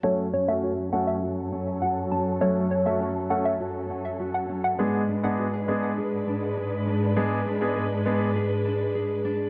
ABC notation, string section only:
X:1
M:4/4
L:1/8
Q:1/4=101
K:F#m
V:1 name="String section"
[F,,F,CA]8- | [F,,F,CA]8 | [G,,G,DB]8- | [G,,G,DB]8 |]